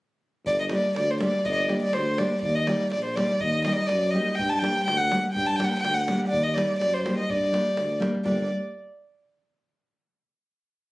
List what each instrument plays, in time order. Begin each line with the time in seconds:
0.46 tuba G1, violin D5, davul low
0.60 violin D#5
0.69 nylon-string guitar G3 A#3 D4 G4, violin D5, davul high
0.85 davul high
0.96 tuba D2, violin D5, davul high
1.10 violin C5
1.20 nylon-string guitar G3 A#3 D4 G4, violin D5, davul high
1.34 davul high
1.45 tuba G1, violin D5 D#5, davul low
1.51 violin D#5
1.57 violin D5
1.68 nylon-string guitar G3 A#3 D4 G4, davul high
1.82 violin D5, davul high
1.93 tuba D2, violin C5, davul high
2.18 nylon-string guitar G3 A#3 D4 G4, violin D5, davul high
2.32 davul high
2.41 tuba D#2, violin D5, davul low
2.55 violin D#5
2.67 nylon-string guitar G3 A#3 D#4 G4, violin D5, davul high
2.81 davul high
2.92 tuba A#1, violin D5, davul high
3.04 violin C5
3.16 nylon-string guitar G3 A#3 D#4 G4, violin D5, davul high
3.31 davul high
3.40 tuba D#2, violin D#5, davul low
3.64 nylon-string guitar G3 A#3 D#4 G4, violin D#5, davul high
3.72 violin D5
3.77 violin D#5, davul high
3.86 tuba F#2, violin D5, davul high
4.03 davul high
4.11 nylon-string guitar G3 A#3 D#4, violin D#5
4.15 nylon-string guitar G4
4.27 davul high
4.35 violin G5
4.39 tuba G2, davul low
4.49 violin A5
4.59 nylon-string guitar G3 A#3, violin G5
4.63 nylon-string guitar D4 G4, davul high
4.76 davul high
4.84 tuba D2, violin G5
4.88 davul high
4.97 violin F#5
5.11 nylon-string guitar G3 A#3 D4 G4, davul high
5.25 davul high
5.32 tuba G2, violin G5, davul low
5.46 violin A5
5.56 nylon-string guitar G3 A#3, violin G5
5.60 nylon-string guitar D4 G4, violin F#5, davul high
5.68 violin G5
5.75 davul high
5.79 violin G5
5.83 tuba D2, davul high
5.94 violin F#5
6.08 nylon-string guitar G3 A#3 D4 G4, davul high
6.23 davul high
6.28 violin D5
6.32 tuba D#2, davul low
6.43 violin D#5
6.53 nylon-string guitar G3 A#3 D#4 G4, violin D5
6.58 davul high
6.71 davul high
6.79 tuba F#2, violin D5, davul high
6.93 violin C5
7.04 nylon-string guitar G3 A#3 D#4 G4, davul high
7.18 violin D#5, davul high
7.29 tuba G2, violin D5, davul low
7.44 davul high
7.52 nylon-string guitar G3 A#3 D4 G4, davul high
7.67 davul high
7.77 tuba D2, davul high
7.91 davul high
8.00 nylon-string guitar G3 A#3 D4 G4, davul high
8.15 davul high
8.24 tuba G1, nylon-string guitar G3 A#3 D4 G4, violin D5, davul low